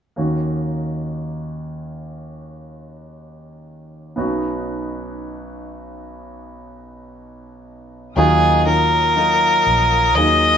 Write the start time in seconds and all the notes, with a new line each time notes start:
0.16 D#2 D#3 A#3 C#4 D#4 F#4
4.16 B1 B2 B3 C#4 D#4 F#4
8.16 D#2 D#3 F#3 A#3 D#4 F4 G#4 A#4 F5 D#6
8.65 D#4 F4 A#4
9.15 F#3 D#4 F4 A#4
9.67 A#1
10.16 D#2 F#3 A#3 D#4 G#4 D#5